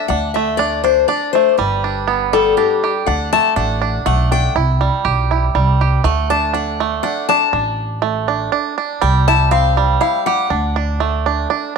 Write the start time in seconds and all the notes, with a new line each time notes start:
0.08 D2 D4 F#5
0.34 A3 E5
0.57 D4 D5
0.84 D4 C5
1.08 D4 D5
1.33 A3 C5
1.58 G1 G3 B4
1.84 D4
2.08 B3
2.33 G3 A4
2.57 D4 G4
2.84 G4
3.06 D2 D4 F#5
3.33 A3 A5
3.56 A1 D4 F#5
3.82 D4
4.06 B1 A3 F#5
4.32 D4 G5
4.55 C2 E4
4.81 G3
5.05 B1 G4
5.31 E4
5.55 C2 G3
5.81 G4
6.04 D2 A3 F#5
6.30 D4 A5
6.54 D4 F#5
6.80 A3
7.03 D4 F#5
7.29 D4 A5
7.53 A1 D4
8.02 A3
8.28 D4
8.52 D4
8.78 D4
9.02 C2 G3 G5
9.28 E4 A5
9.51 C4 F5
9.77 G3
10.01 E4 F5
10.26 G4 F#5
10.50 D2 D4
10.76 D4
11.00 A3
11.26 D4
11.50 D4